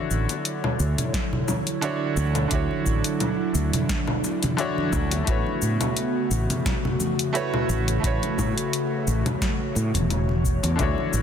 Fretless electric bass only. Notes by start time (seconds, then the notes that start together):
0.11 A1
0.80 D2
2.17 D2
2.51 D2
2.86 A1
3.55 D2
4.93 D2
5.28 A1
5.62 A2
6.31 A1
7.69 A1
8.03 A1
8.38 A2
9.07 A1
9.76 A2
9.95 E1
10.64 E2
10.79 D2
11.13 A1